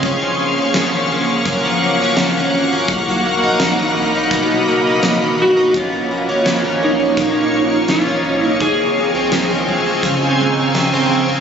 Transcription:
0.00 0.54 F#1 loud
0.00 0.11 C#3 medium
0.00 0.21 F3 soft
0.00 0.11 G#3 medium
0.00 8.56 A#3 medium
0.00 2.85 F5 medium
0.00 5.71 F#5 medium
0.00 2.86 C#6 medium
0.00 kick loud
0.00 closed hi-hat medium
0.05 0.57 C#4 medium
0.22 0.75 F3 medium
0.40 1.12 A#3 medium
0.57 1.08 F1 medium
0.57 0.93 C#4 medium
0.74 1.64 F3 soft
0.74 snare loud
0.74 closed hi-hat medium
0.94 1.28 C#4 medium
1.11 1.61 F#1 medium
1.11 1.83 A#3 medium
1.30 1.46 C#4 medium
1.46 2.89 F#2 medium
1.46 2.00 C#4 soft
1.46 kick medium
1.46 closed hi-hat medium
1.65 2.18 F3 soft
1.81 2.49 F#1 medium
1.81 2.55 A#3 medium
2.02 2.36 C#4 medium
2.17 2.97 F3 medium
2.17 snare medium
2.17 closed hi-hat medium
2.37 2.72 C#4 medium
2.53 2.87 G#1 medium
2.53 3.26 A#3 medium
2.73 2.90 C#4 medium
2.88 3.40 B1 medium
2.88 3.42 D#4 medium
2.88 5.72 D#5 medium
2.88 5.72 B5 medium
2.88 kick loud
2.88 closed hi-hat medium
3.09 3.61 F#3 soft
3.26 3.97 A#3 medium
3.42 3.93 A#1 medium
3.42 3.78 D#4 medium
3.60 4.49 F#3 soft
3.60 snare medium
3.60 closed hi-hat medium
3.79 4.14 D#4 medium
3.96 4.47 B1 medium
3.96 4.68 A#3 medium
4.15 4.32 D#4 medium
4.31 5.75 B2 medium
4.31 4.86 D#4 medium
4.31 kick medium
4.31 closed hi-hat medium
4.50 5.03 F#3 soft
4.67 5.35 F#1 medium
4.67 5.39 A#3 medium
4.87 5.21 D#4 medium
5.03 5.82 F#3 soft
5.03 snare medium
5.03 closed hi-hat medium
5.22 5.56 D#4 medium
5.39 5.73 G#1 medium
5.39 6.11 A#3 soft
5.39 5.77 F#4 medium
5.57 5.75 D#4 medium
5.74 6.25 A#1 medium
5.74 7.16 A#2 medium
5.74 6.28 C#4 soft
5.74 6.84 F4 medium
5.74 8.57 C#5 medium
5.74 11.40 F5 medium
5.74 8.58 C#6 medium
5.74 kick medium
5.74 closed hi-hat medium
5.92 6.46 F3 soft
6.11 6.81 A#3 medium
6.29 6.80 G#1 medium
6.29 6.64 C#4 medium
6.45 7.35 F3 medium
6.45 7.24 C#5 medium
6.45 snare loud
6.45 closed hi-hat medium
6.64 6.99 C#4 medium
6.83 7.33 A#1 loud
6.83 7.53 A#3 medium
6.83 7.91 D#4 medium
7.00 7.18 C#4 medium
7.17 8.60 A#2 medium
7.17 7.72 C#4 medium
7.17 kick medium
7.17 closed hi-hat medium
7.35 7.89 F3 soft
7.53 8.21 A#1 medium
7.53 8.23 A#3 soft
7.72 8.06 C#4 medium
7.88 8.79 F3 medium
7.88 8.45 F4 medium
7.88 snare medium
7.88 closed hi-hat medium
8.06 8.43 C#4 medium
8.25 8.59 C2 medium
8.25 8.67 A#3 medium
8.43 8.61 C#4 medium
8.43 8.64 D#4 medium
8.60 9.11 C#2 medium
8.60 9.14 C4 soft
8.60 11.40 C4 medium
8.60 11.07 G#4 medium
8.60 11.40 G#5 medium
8.60 11.40 C#6 medium
8.60 kick medium
8.60 closed hi-hat medium
8.79 9.32 F3 medium
8.98 9.67 G#3 medium
9.14 9.65 C2 medium
9.14 9.49 C4 medium
9.32 10.22 F3 medium
9.32 snare medium
9.32 closed hi-hat medium
9.50 9.85 C4 medium
9.68 10.19 C#2 medium
9.68 10.39 G#3 medium
9.86 10.03 C4 medium
10.03 11.40 C#3 medium
10.03 10.57 C4 medium
10.03 10.82 F5 soft
10.03 kick medium
10.03 closed hi-hat medium
10.22 10.75 F3 soft
10.26 11.02 G#5 soft
10.39 11.07 G#1 medium
10.39 11.10 G#3 medium
10.49 11.23 A#5 soft
10.58 10.92 C4 medium
10.75 11.40 F3 medium
10.75 snare medium
10.75 closed hi-hat medium
10.94 11.28 C4 medium
11.11 11.40 F1 medium
11.11 11.40 G#3 medium
11.30 11.40 C4 medium

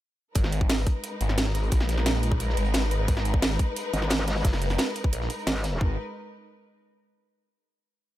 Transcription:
0.35 0.85 G#1 loud
0.35 5.77 G#3 medium
0.35 5.77 D#4 medium
0.35 5.77 A#4 medium
0.35 5.77 B4 medium
0.35 kick loud
0.35 closed hi-hat loud
0.44 snare medium
0.44 snare soft
0.52 closed hi-hat medium
0.61 kick loud
0.69 snare loud
0.69 closed hi-hat loud
0.69 open hi-hat medium
0.78 snare soft
0.87 kick loud
0.87 closed hi-hat medium
1.04 closed hi-hat loud
1.04 closed hi-hat medium
1.21 1.71 G#1 medium
1.21 closed hi-hat medium
1.29 snare soft
1.38 snare loud
1.38 closed hi-hat loud
1.38 closed hi-hat medium
1.46 snare medium
1.46 snare soft
1.55 snare soft
1.55 closed hi-hat medium
1.63 closed hi-hat soft
1.71 2.56 A#1 loud
1.71 kick loud
1.71 closed hi-hat loud
1.71 closed hi-hat medium
1.80 snare medium
1.80 snare soft
1.89 snare medium
1.89 closed hi-hat medium
1.97 snare soft
2.06 snare loud
2.06 closed hi-hat loud
2.06 closed hi-hat medium
2.15 snare soft
2.23 closed hi-hat medium
2.32 kick loud
2.40 closed hi-hat medium
2.49 snare soft
2.57 3.07 G#1 medium
2.57 closed hi-hat medium
2.65 closed hi-hat soft
2.74 snare loud
2.74 closed hi-hat loud
2.74 closed hi-hat medium
2.83 snare soft
2.91 closed hi-hat medium
3.08 3.58 G#1 loud
3.08 kick loud
3.08 closed hi-hat medium
3.17 snare medium
3.17 snare soft
3.25 closed hi-hat medium
3.34 kick loud
3.42 snare loud
3.42 closed hi-hat medium
3.42 open hi-hat medium
3.50 snare soft
3.59 kick loud
3.59 closed hi-hat medium
3.76 closed hi-hat medium
3.93 4.43 G#1 medium
3.93 closed hi-hat medium
4.02 snare soft
4.10 snare loud
4.10 closed hi-hat medium
4.19 snare soft
4.19 snare medium
4.27 snare loud
4.27 closed hi-hat medium
4.27 open hi-hat medium
4.36 snare loud
4.36 open hi-hat medium
4.44 4.77 F#1 loud
4.44 kick loud
4.44 snare loud
4.44 closed hi-hat medium
4.44 open hi-hat medium
4.53 snare loud
4.53 snare soft
4.53 open hi-hat medium
4.62 snare soft
4.62 closed hi-hat medium
4.70 snare soft
4.70 closed hi-hat medium
4.78 snare loud
4.78 closed hi-hat medium
4.87 snare soft
4.96 closed hi-hat medium
5.04 kick loud
5.13 5.28 A#1 loud
5.13 closed hi-hat medium
5.21 snare soft
5.30 closed hi-hat medium
5.39 closed hi-hat soft
5.47 5.80 G#1 loud
5.47 snare loud
5.47 closed hi-hat medium
5.47 open hi-hat medium
5.56 snare soft
5.63 snare loud
5.63 closed hi-hat medium
5.72 snare soft
5.81 5.97 G#1 loud
5.81 5.97 G#3 medium
5.81 5.97 D#4 medium
5.81 5.97 A#4 medium
5.81 5.97 B4 medium
5.81 kick loud

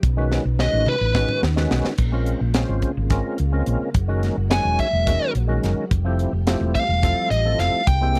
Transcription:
0.02 0.37 B1 loud
0.02 1.96 C#3 medium
0.02 1.97 B3 medium
0.02 1.97 D#4 medium
0.02 kick loud
0.02 closed hi-hat medium
0.17 0.45 D#3 medium
0.17 0.45 G#3 medium
0.17 0.45 C#4 medium
0.17 0.45 F#4 medium
0.17 0.45 B4 loud
0.32 snare medium
0.45 0.68 B1 medium
0.59 0.96 D#3 medium
0.59 0.96 G#3 medium
0.59 0.96 C#4 medium
0.59 0.97 F#4 medium
0.59 0.97 B4 medium
0.59 0.87 D#5 loud
0.59 snare medium
0.73 0.84 A1 medium
0.86 1.40 B4 medium
0.86 mid tom medium
1.01 1.24 A1 medium
1.14 1.42 D#3 medium
1.14 1.42 G#3 medium
1.14 1.42 C#4 medium
1.14 1.43 F#4 medium
1.14 1.43 B4 medium
1.14 kick loud
1.14 snare medium
1.29 mid tom medium
1.43 1.65 D#2 medium
1.43 snare medium
1.56 1.93 D#3 medium
1.56 1.94 G#3 medium
1.56 1.94 C#4 medium
1.56 1.94 F#4 medium
1.56 1.94 B4 loud
1.56 snare medium
1.71 1.82 B1 medium
1.71 snare loud
1.85 snare medium
1.98 2.32 A#1 medium
1.98 3.92 C#3 medium
1.98 3.92 G#3 medium
1.98 5.86 A#3 medium
1.98 3.92 F4 medium
1.98 kick loud
1.98 closed hi-hat medium
1.98 crash medium
2.12 2.40 G#3 medium
2.12 2.40 C4 medium
2.12 2.40 C#4 medium
2.12 2.41 F4 medium
2.12 2.41 A#4 medium
2.26 closed hi-hat medium
2.41 2.63 A#1 medium
2.54 2.91 G#3 medium
2.54 2.91 C4 medium
2.54 2.92 C#4 medium
2.54 2.92 F4 medium
2.54 2.92 C5 loud
2.54 snare loud
2.54 closed hi-hat medium
2.69 2.80 G#1 medium
2.82 kick medium
2.82 closed hi-hat medium
2.97 3.20 G#1 medium
3.10 3.38 G#3 medium
3.10 3.38 C4 medium
3.10 3.38 C#4 medium
3.10 3.39 F4 medium
3.10 3.39 A#4 medium
3.10 kick loud
3.10 snare soft
3.10 closed hi-hat medium
3.38 3.62 C#2 medium
3.38 closed hi-hat medium
3.52 3.89 G#3 medium
3.52 3.89 C4 medium
3.52 3.90 C#4 medium
3.52 3.90 F4 medium
3.52 3.90 A#4 loud
3.66 3.78 A#1 medium
3.66 closed hi-hat medium
3.81 muted fingered electric bass stroke soft
3.94 4.28 F#1 loud
3.94 5.89 F#3 medium
3.94 5.89 G#3 medium
3.94 5.89 F#4 medium
3.94 kick loud
3.94 closed hi-hat medium
4.08 4.36 D#3 medium
4.08 4.36 G#3 medium
4.08 4.36 C#4 medium
4.08 4.37 F#4 medium
4.08 4.37 A#4 loud
4.23 snare soft
4.23 closed hi-hat medium
4.37 4.60 F#1 medium
4.50 4.87 D#3 medium
4.50 4.87 G#3 medium
4.50 4.88 C#4 medium
4.50 4.88 F#4 medium
4.50 4.88 C#5 medium
4.50 4.78 G#5 medium
4.50 snare loud
4.50 closed hi-hat medium
4.65 4.76 E1 medium
4.79 5.31 E5 medium
4.79 kick medium
4.79 closed hi-hat medium
4.93 5.15 E1 medium
5.06 5.34 D#3 medium
5.06 5.34 G#3 medium
5.06 5.34 C#4 medium
5.06 5.35 F#4 medium
5.06 5.35 A#4 medium
5.06 kick loud
5.06 snare soft
5.06 closed hi-hat medium
5.35 5.57 A#1 medium
5.35 closed hi-hat medium
5.48 5.85 D#3 loud
5.48 5.85 G#3 medium
5.48 5.86 C#4 medium
5.48 5.86 F#4 medium
5.48 5.86 A#4 loud
5.63 5.75 F#1 medium
5.63 snare soft
5.63 closed hi-hat medium
5.78 muted fingered electric bass stroke soft
5.91 6.25 F1 loud
5.91 7.85 F3 medium
5.91 7.86 G3 medium
5.91 7.85 A3 medium
5.91 7.85 G4 medium
5.91 kick loud
5.91 closed hi-hat medium
6.05 6.32 F3 medium
6.05 6.33 A3 medium
6.05 6.33 C4 medium
6.05 6.33 E4 medium
6.05 6.33 G4 loud
6.19 closed hi-hat medium
6.33 6.55 F1 medium
6.47 6.84 F3 medium
6.47 6.84 A3 medium
6.47 6.84 C4 medium
6.47 6.84 E4 medium
6.47 6.84 G4 loud
6.47 snare loud
6.47 closed hi-hat medium
6.61 6.72 E1 medium
6.75 7.27 F5 medium
6.75 kick medium
6.75 closed hi-hat medium
6.89 7.11 E1 loud
7.03 7.31 F3 medium
7.03 7.31 A3 medium
7.03 7.31 C4 medium
7.03 7.31 E4 medium
7.03 7.31 A4 medium
7.03 kick loud
7.03 snare soft
7.03 closed hi-hat medium
7.30 7.53 A1 medium
7.30 7.58 D#5 medium
7.30 closed hi-hat medium
7.45 7.82 F3 medium
7.45 7.82 A3 medium
7.45 7.82 C4 medium
7.45 7.83 E4 medium
7.45 7.83 A4 medium
7.59 7.70 F1 medium
7.59 7.87 F5 medium
7.59 snare soft
7.59 closed hi-hat medium
7.74 muted fingered electric bass stroke soft
7.86 8.20 C2 loud
7.86 8.20 C3 medium
7.86 8.20 G#3 medium
7.86 8.20 A#3 medium
7.86 8.20 E4 medium
7.86 8.20 G5 medium
7.86 kick loud
7.86 closed hi-hat medium
8.01 8.20 G#3 medium
8.01 8.20 A#3 medium
8.01 8.20 C4 medium
8.01 8.20 E4 medium
8.01 8.20 G4 medium
8.15 snare soft
8.15 closed hi-hat medium

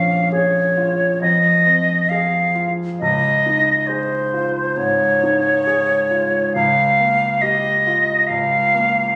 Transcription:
0.00 1.18 A#1 soft
0.00 0.60 C#4 soft
0.00 0.32 F5 soft
0.32 1.04 G#4 soft
0.32 1.20 C#5 soft
0.77 1.21 F4 soft
1.22 2.96 F2 soft
1.22 2.11 D#5 medium
1.66 2.38 C4 soft
2.09 2.83 G#4 soft
2.09 2.72 F5 soft
2.55 3.00 F4 soft
3.00 4.74 C#2 soft
3.00 3.89 D#5 medium
3.46 4.16 D#4 soft
3.87 4.60 G#4 soft
3.87 4.78 C5 medium
4.33 5.04 F4 soft
4.76 5.49 G#2 soft
4.76 6.53 C#5 medium
5.23 5.94 D#4 soft
5.67 6.38 G#4 soft
6.11 6.55 F4 soft
6.54 8.25 C#2 soft
6.54 7.43 F5 medium
7.00 7.68 A#3 soft
7.41 8.11 G4 soft
7.41 8.29 D#5 medium
7.87 8.57 F4 soft
8.27 9.16 C#2 soft
8.27 9.16 F5 medium
8.75 9.16 A#3 soft

